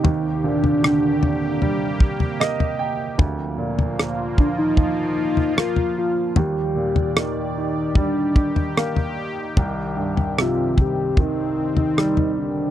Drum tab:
SD |----r-------r---|----r-------r---|----r-------r---|----r-------r---|
FT |o--o--o-o--o-o--|o--o----o--o-o--|o--o----o--o-o--|o--o--o-o--o-o--|
BD |----------o-----|o-----o-o-------|--------o-o-----|o-----o-o-------|